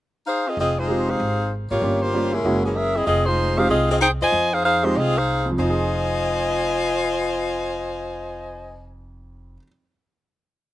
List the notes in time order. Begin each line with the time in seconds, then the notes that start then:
0.26 D#4 G#4 C5 F5
0.47 C4 F4 G#4 D#5
0.57 F1 C4 F4 G#4 D#5
0.78 G#3 D#4 F4 C5
0.88 G#3 C4 D#4 F4 G4
1.09 D#4 G#4 C5 F5
1.20 G#1
1.70 G#1 A#3 F4 G4 C#5
1.81 G1 G3 A#3 C#4 F4 G4
2.01 A#3 F4 G4 C5
2.14 G3 A#3 C#4 F4 G4
2.32 G#3 C#4 E4 A#4
2.44 F#1 G#3 A#3 C#4 E4 F#4
2.64 E3 A#3 C#4 G#4
2.76 C#4 G#4 A#4 E5
2.95 C4 E4 G#4 D#5
3.06 F1 C4 F4 G#4 D#5
3.26 G#3 D#4 F4 C5
3.57 G#3 C4 D#4 F4 G4 G#4 C5 F5
3.69 C2 C4 F4 G#4 D#5
3.90 C4 F4 G#4 D#5
4.00 D#4 G#4 C5 G5
4.21 E2 F4 C5 D#5 G#5
4.32 F2
4.53 D#4 G#4 C5 F5
4.64 D#4 G#4 C5 F5
4.83 G#3 C4 D#4 F4 G4 C5
4.95 C2 C4 F4 G#4 D#5
5.17 D#4 G#4 C5 F5
5.45 F2
5.51 F3
5.58 F1 D#4 F4 C5 D#5 G#5
5.64 F4
5.70 G#4